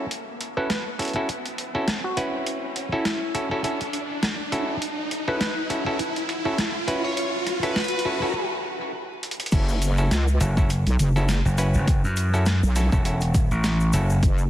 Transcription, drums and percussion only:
0.11 closed hi-hat
0.41 closed hi-hat
0.70 snare, closed hi-hat
0.99 closed hi-hat
1.02 closed hi-hat
1.05 closed hi-hat
1.08 closed hi-hat
1.09 closed hi-hat
1.13 closed hi-hat
1.29 closed hi-hat
1.45 closed hi-hat
1.58 closed hi-hat
1.88 snare, closed hi-hat
2.17 closed hi-hat
2.47 closed hi-hat
2.76 closed hi-hat
3.05 snare, closed hi-hat
3.35 closed hi-hat
3.64 closed hi-hat
3.81 closed hi-hat
3.93 closed hi-hat
4.23 snare, closed hi-hat
4.52 closed hi-hat
4.82 closed hi-hat
5.11 closed hi-hat
5.41 snare, closed hi-hat
5.70 closed hi-hat
5.99 closed hi-hat
6.16 closed hi-hat
6.29 closed hi-hat
6.58 snare, closed hi-hat
6.88 closed hi-hat
7.17 closed hi-hat
7.47 cross-stick, closed hi-hat
7.63 closed hi-hat
7.76 snare, closed hi-hat
7.80 closed hi-hat
7.84 closed hi-hat
7.88 closed hi-hat
7.99 closed hi-hat
9.23 closed hi-hat
9.31 closed hi-hat
9.40 closed hi-hat
9.46 closed hi-hat
9.52 kick, closed hi-hat, crash, shaker
9.69 shaker
9.82 closed hi-hat, shaker
9.97 shaker
10.11 snare, closed hi-hat, shaker
10.28 shaker
10.41 closed hi-hat, shaker
10.57 kick, shaker
10.70 closed hi-hat, shaker
10.87 closed hi-hat, shaker
10.99 closed hi-hat, shaker
11.16 shaker
11.28 snare, closed hi-hat, shaker
11.46 shaker
11.58 closed hi-hat, shaker
11.74 shaker
11.88 kick, closed hi-hat, shaker
12.04 shaker
12.17 closed hi-hat, shaker
12.34 shaker
12.46 snare, closed hi-hat, shaker
12.63 shaker
12.76 snare, closed hi-hat, shaker
12.92 kick, shaker
13.05 closed hi-hat, shaker
13.21 closed hi-hat, shaker
13.34 kick, closed hi-hat, shaker
13.51 shaker
13.64 snare, closed hi-hat, shaker
13.80 shaker
13.93 closed hi-hat, shaker
14.10 shaker
14.23 kick, closed hi-hat, shaker
14.38 shaker

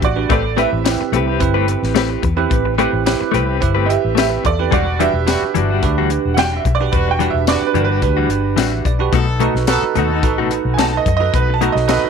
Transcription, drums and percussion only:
0.02 kick, closed hi-hat
0.30 kick, closed hi-hat
0.58 closed hi-hat
0.86 snare, closed hi-hat, tambourine
1.13 closed hi-hat
1.40 kick, closed hi-hat
1.68 closed hi-hat
1.84 snare
1.96 snare, closed hi-hat, tambourine
2.23 kick, closed hi-hat
2.51 kick, closed hi-hat
2.79 closed hi-hat
3.06 snare, closed hi-hat, tambourine
3.34 closed hi-hat
3.62 kick, closed hi-hat
3.90 closed hi-hat
4.17 snare, closed hi-hat, tambourine
4.45 kick, closed hi-hat
4.72 kick, closed hi-hat
5.00 closed hi-hat
5.27 snare, closed hi-hat, tambourine
5.55 closed hi-hat
5.83 kick, closed hi-hat
6.10 closed hi-hat
6.37 snare, closed hi-hat, tambourine
6.65 kick, closed hi-hat
6.93 kick, closed hi-hat
7.20 closed hi-hat
7.47 snare, closed hi-hat, tambourine
7.75 closed hi-hat
8.02 kick, closed hi-hat
8.30 closed hi-hat
8.58 snare, closed hi-hat, tambourine
8.85 kick, closed hi-hat
9.13 kick, closed hi-hat
9.40 closed hi-hat
9.56 snare
9.67 snare, closed hi-hat, tambourine
9.95 closed hi-hat
10.23 kick, closed hi-hat
10.51 closed hi-hat
10.79 snare, closed hi-hat, tambourine
11.06 kick, closed hi-hat
11.34 kick, closed hi-hat
11.62 closed hi-hat
11.77 snare
11.89 snare, closed hi-hat, tambourine

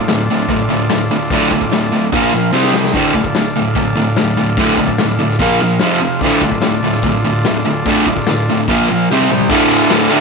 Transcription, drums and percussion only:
0.08 snare, open hi-hat
0.29 open hi-hat
0.49 kick, open hi-hat
0.69 open hi-hat
0.89 snare, open hi-hat
1.10 open hi-hat
1.30 kick, open hi-hat
1.51 kick, open hi-hat
1.61 kick
1.72 snare, open hi-hat
1.93 open hi-hat
2.13 kick, open hi-hat
2.33 open hi-hat
2.54 snare
2.63 snare
2.73 snare
2.84 snare
2.94 kick, open hi-hat
3.14 kick, open hi-hat
3.24 kick
3.34 snare, open hi-hat
3.55 open hi-hat
3.75 kick, open hi-hat
3.96 open hi-hat
4.16 snare, open hi-hat
4.36 open hi-hat
4.57 kick, open hi-hat
4.68 snare
4.77 kick, open hi-hat
4.88 kick
4.98 snare, open hi-hat
5.19 open hi-hat
5.30 snare
5.39 kick, open hi-hat
5.60 open hi-hat
5.79 snare, open hi-hat
6.00 open hi-hat
6.21 kick, open hi-hat
6.41 kick, open hi-hat
6.52 kick
6.61 snare, open hi-hat
6.82 open hi-hat
6.92 snare
7.02 kick, open hi-hat
7.24 open hi-hat
7.44 snare, open hi-hat
7.65 open hi-hat
7.85 kick, open hi-hat
7.97 snare
8.07 kick, open hi-hat
8.17 kick
8.26 snare, open hi-hat
8.48 open hi-hat
8.68 kick, open hi-hat
8.89 open hi-hat
9.10 snare
9.20 high tom
9.30 mid tom
9.40 floor tom
9.50 kick, crash
9.90 snare, open hi-hat

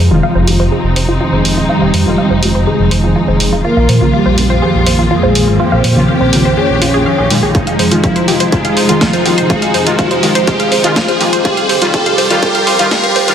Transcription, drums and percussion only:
0.47 open hi-hat
0.96 open hi-hat
1.45 open hi-hat
1.94 open hi-hat
2.43 open hi-hat
2.91 open hi-hat
3.40 open hi-hat
3.89 open hi-hat
4.38 open hi-hat
4.87 open hi-hat
5.35 open hi-hat
5.84 open hi-hat
6.33 open hi-hat
6.82 open hi-hat
7.30 open hi-hat
7.55 kick, closed hi-hat
7.67 closed hi-hat
7.79 open hi-hat
7.91 closed hi-hat
8.04 kick, closed hi-hat
8.16 closed hi-hat
8.28 open hi-hat
8.40 closed hi-hat
8.52 kick, closed hi-hat
8.65 closed hi-hat
8.77 open hi-hat
8.89 closed hi-hat
9.01 kick, snare, closed hi-hat
9.13 closed hi-hat
9.26 open hi-hat
9.38 closed hi-hat
9.50 kick, closed hi-hat
9.62 closed hi-hat
9.74 open hi-hat
9.87 closed hi-hat
9.99 kick, closed hi-hat
10.11 closed hi-hat
10.23 open hi-hat
10.35 closed hi-hat
10.47 kick, closed hi-hat
10.60 closed hi-hat
10.72 open hi-hat
10.84 closed hi-hat
10.96 kick, snare, closed hi-hat
11.08 closed hi-hat
11.21 open hi-hat
11.33 closed hi-hat
11.45 kick, closed hi-hat
11.57 closed hi-hat
11.69 open hi-hat
11.82 closed hi-hat
11.94 kick, closed hi-hat
12.06 closed hi-hat
12.18 open hi-hat
12.30 closed hi-hat
12.43 kick, closed hi-hat
12.55 closed hi-hat
12.67 open hi-hat
12.79 closed hi-hat
12.91 kick, snare, closed hi-hat
13.04 closed hi-hat
13.16 open hi-hat
13.28 closed hi-hat

